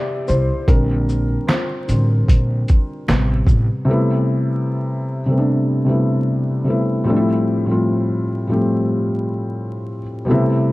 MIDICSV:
0, 0, Header, 1, 4, 480
1, 0, Start_track
1, 0, Key_signature, 0, "minor"
1, 0, Tempo, 800000
1, 409, Time_signature, 4, 2, 24, 8
1, 6434, End_track
2, 0, Start_track
2, 0, Title_t, "Felt piano"
2, 0, Program_c, 0, 0
2, 0, Control_c, 0, 64, 127
2, 0, Note_on_c, 0, 48, 58
2, 0, Note_on_c, 0, 55, 52
2, 0, Note_on_c, 0, 59, 62
2, 0, Note_on_c, 0, 64, 78
2, 0, Note_on_c, 0, 67, 77
2, 0, Note_on_c, 0, 72, 93
2, 0, Note_on_c, 0, 74, 95
2, 0, Note_on_c, 0, 76, 115
2, 154, Note_off_c, 0, 67, 0
2, 168, Note_off_c, 0, 72, 0
2, 168, Note_on_c, 0, 72, 92
2, 174, Note_off_c, 0, 74, 0
2, 176, Note_off_c, 0, 64, 0
2, 176, Note_on_c, 0, 64, 68
2, 396, Note_off_c, 0, 64, 0
2, 406, Note_on_c, 0, 50, 58
2, 407, Note_on_c, 0, 70, 92
2, 410, Note_off_c, 0, 55, 0
2, 410, Note_on_c, 0, 55, 52
2, 413, Note_on_c, 0, 60, 65
2, 415, Note_on_c, 0, 62, 70
2, 416, Note_off_c, 0, 59, 0
2, 416, Note_off_c, 0, 72, 0
2, 416, Control_c, 0, 64, 0
2, 419, Note_off_c, 0, 48, 0
2, 422, Note_off_c, 0, 76, 0
2, 520, Control_c, 0, 64, 127
2, 736, Note_off_c, 0, 50, 0
2, 738, Note_off_c, 0, 55, 0
2, 740, Note_off_c, 0, 60, 0
2, 868, Note_off_c, 0, 62, 0
2, 884, Note_on_c, 0, 72, 78
2, 895, Note_on_c, 0, 65, 60
2, 902, Note_off_c, 0, 70, 0
2, 1127, Note_on_c, 0, 50, 51
2, 1131, Note_on_c, 0, 55, 45
2, 1132, Note_on_c, 0, 60, 54
2, 1343, Note_off_c, 0, 72, 0
2, 1344, Note_off_c, 0, 50, 0
2, 1346, Note_off_c, 0, 55, 0
2, 1347, Note_off_c, 0, 60, 0
2, 1348, Note_off_c, 0, 65, 0
2, 1847, Note_on_c, 0, 48, 57
2, 1851, Note_on_c, 0, 55, 50
2, 1854, Note_on_c, 0, 59, 61
2, 1856, Control_c, 0, 64, 0
2, 1972, Control_c, 0, 64, 127
2, 2301, Note_off_c, 0, 48, 0
2, 2306, Note_off_c, 0, 55, 0
2, 2307, Note_off_c, 0, 59, 0
2, 2310, Note_on_c, 0, 48, 99
2, 2319, Note_on_c, 0, 55, 97
2, 2328, Note_on_c, 0, 57, 97
2, 2336, Note_on_c, 0, 59, 92
2, 2337, Control_c, 0, 64, 0
2, 2344, Note_on_c, 0, 64, 107
2, 2445, Control_c, 0, 64, 127
2, 3119, Note_off_c, 0, 48, 0
2, 3124, Note_off_c, 0, 55, 0
2, 3128, Note_off_c, 0, 57, 0
2, 3132, Note_off_c, 0, 59, 0
2, 3136, Note_off_c, 0, 64, 0
2, 3158, Note_on_c, 0, 48, 75
2, 3168, Note_on_c, 0, 55, 66
2, 3176, Note_on_c, 0, 57, 65
2, 3184, Note_on_c, 0, 59, 68
2, 3193, Note_on_c, 0, 60, 61
2, 3222, Note_off_c, 0, 60, 0
2, 3232, Note_on_c, 0, 62, 85
2, 3499, Note_off_c, 0, 48, 0
2, 3504, Note_off_c, 0, 55, 0
2, 3508, Note_off_c, 0, 57, 0
2, 3509, Note_on_c, 0, 48, 76
2, 3512, Note_off_c, 0, 59, 0
2, 3518, Note_on_c, 0, 55, 74
2, 3528, Note_on_c, 0, 57, 66
2, 3535, Note_on_c, 0, 59, 71
2, 3536, Note_off_c, 0, 62, 0
2, 3543, Note_on_c, 0, 64, 85
2, 3974, Note_off_c, 0, 48, 0
2, 3979, Note_off_c, 0, 55, 0
2, 3984, Note_off_c, 0, 57, 0
2, 3985, Note_on_c, 0, 48, 73
2, 3988, Note_off_c, 0, 59, 0
2, 3991, Note_off_c, 0, 64, 0
2, 3993, Note_on_c, 0, 55, 68
2, 4002, Note_on_c, 0, 57, 70
2, 4009, Note_on_c, 0, 59, 70
2, 4020, Note_on_c, 0, 64, 88
2, 4225, Note_off_c, 0, 48, 0
2, 4225, Note_on_c, 0, 45, 105
2, 4229, Note_off_c, 0, 55, 0
2, 4232, Note_on_c, 0, 53, 88
2, 4233, Note_off_c, 0, 57, 0
2, 4237, Note_off_c, 0, 59, 0
2, 4239, Note_on_c, 0, 55, 93
2, 4242, Note_off_c, 0, 64, 0
2, 4245, Note_on_c, 0, 57, 91
2, 4253, Note_on_c, 0, 60, 89
2, 4255, Control_c, 0, 64, 0
2, 4259, Note_on_c, 0, 62, 96
2, 4297, Note_off_c, 0, 62, 0
2, 4298, Note_on_c, 0, 64, 106
2, 4360, Control_c, 0, 64, 127
2, 4585, Note_off_c, 0, 45, 0
2, 4590, Note_off_c, 0, 53, 0
2, 4594, Note_off_c, 0, 55, 0
2, 4594, Note_on_c, 0, 45, 83
2, 4597, Note_off_c, 0, 57, 0
2, 4601, Note_off_c, 0, 60, 0
2, 4601, Note_on_c, 0, 53, 69
2, 4607, Note_on_c, 0, 55, 74
2, 4614, Note_on_c, 0, 57, 69
2, 4620, Note_on_c, 0, 60, 68
2, 4623, Note_off_c, 0, 64, 0
2, 4628, Note_on_c, 0, 65, 86
2, 5058, Note_off_c, 0, 45, 0
2, 5061, Note_off_c, 0, 53, 0
2, 5064, Note_off_c, 0, 55, 0
2, 5068, Note_off_c, 0, 57, 0
2, 5070, Note_off_c, 0, 60, 0
2, 5074, Note_off_c, 0, 65, 0
2, 5083, Note_on_c, 0, 45, 80
2, 5090, Note_on_c, 0, 53, 74
2, 5096, Note_on_c, 0, 55, 78
2, 5102, Note_on_c, 0, 57, 72
2, 5109, Note_on_c, 0, 60, 77
2, 5117, Note_on_c, 0, 67, 89
2, 5992, Note_off_c, 0, 45, 0
2, 5996, Note_off_c, 0, 53, 0
2, 5998, Note_off_c, 0, 55, 0
2, 6001, Note_off_c, 0, 57, 0
2, 6005, Note_off_c, 0, 60, 0
2, 6009, Note_off_c, 0, 67, 0
2, 6150, Note_on_c, 0, 47, 91
2, 6158, Note_on_c, 0, 55, 90
2, 6168, Note_on_c, 0, 57, 95
2, 6176, Note_on_c, 0, 59, 96
2, 6177, Control_c, 0, 64, 0
2, 6184, Note_on_c, 0, 64, 116
2, 6189, Note_on_c, 0, 48, 105
2, 6203, Note_off_c, 0, 47, 0
2, 6282, Control_c, 0, 64, 127
2, 6434, Note_off_c, 0, 48, 0
2, 6434, Note_off_c, 0, 55, 0
2, 6434, Note_off_c, 0, 57, 0
2, 6434, Note_off_c, 0, 59, 0
2, 6434, Note_off_c, 0, 64, 0
2, 6434, End_track
3, 0, Start_track
3, 0, Title_t, "Upright bass"
3, 0, Program_c, 1, 32
3, 176, Note_on_c, 1, 36, 89
3, 285, Note_off_c, 1, 36, 0
3, 411, Note_on_c, 1, 34, 107
3, 815, Note_off_c, 1, 34, 0
3, 1136, Note_on_c, 1, 33, 89
3, 1335, Note_off_c, 1, 33, 0
3, 1374, Note_on_c, 1, 34, 90
3, 1574, Note_off_c, 1, 34, 0
3, 1856, Note_on_c, 1, 33, 91
3, 2055, Note_off_c, 1, 33, 0
3, 2084, Note_on_c, 1, 33, 94
3, 2198, Note_off_c, 1, 33, 0
3, 6434, End_track
4, 0, Start_track
4, 0, Title_t, "Drums"
4, 167, Note_on_c, 9, 82, 49
4, 227, Note_off_c, 9, 82, 0
4, 407, Note_on_c, 9, 36, 115
4, 409, Note_on_c, 9, 42, 74
4, 467, Note_off_c, 9, 36, 0
4, 469, Note_off_c, 9, 42, 0
4, 654, Note_on_c, 9, 82, 49
4, 714, Note_off_c, 9, 82, 0
4, 891, Note_on_c, 9, 26, 71
4, 892, Note_on_c, 9, 42, 65
4, 893, Note_on_c, 9, 38, 115
4, 899, Note_on_c, 9, 39, 91
4, 951, Note_off_c, 9, 26, 0
4, 952, Note_off_c, 9, 42, 0
4, 953, Note_off_c, 9, 38, 0
4, 959, Note_off_c, 9, 39, 0
4, 1133, Note_on_c, 9, 42, 51
4, 1133, Note_on_c, 9, 82, 53
4, 1193, Note_off_c, 9, 42, 0
4, 1193, Note_off_c, 9, 82, 0
4, 1371, Note_on_c, 9, 36, 96
4, 1376, Note_on_c, 9, 42, 107
4, 1431, Note_off_c, 9, 36, 0
4, 1436, Note_off_c, 9, 42, 0
4, 1610, Note_on_c, 9, 42, 47
4, 1610, Note_on_c, 9, 82, 47
4, 1618, Note_on_c, 9, 36, 95
4, 1670, Note_off_c, 9, 42, 0
4, 1670, Note_off_c, 9, 82, 0
4, 1678, Note_off_c, 9, 36, 0
4, 1850, Note_on_c, 9, 26, 74
4, 1852, Note_on_c, 9, 38, 110
4, 1858, Note_on_c, 9, 39, 88
4, 1859, Note_on_c, 9, 42, 76
4, 1910, Note_off_c, 9, 26, 0
4, 1912, Note_off_c, 9, 38, 0
4, 1918, Note_off_c, 9, 39, 0
4, 1919, Note_off_c, 9, 42, 0
4, 2080, Note_on_c, 9, 36, 86
4, 2088, Note_on_c, 9, 82, 46
4, 2140, Note_off_c, 9, 36, 0
4, 2148, Note_off_c, 9, 82, 0
4, 6434, End_track
0, 0, End_of_file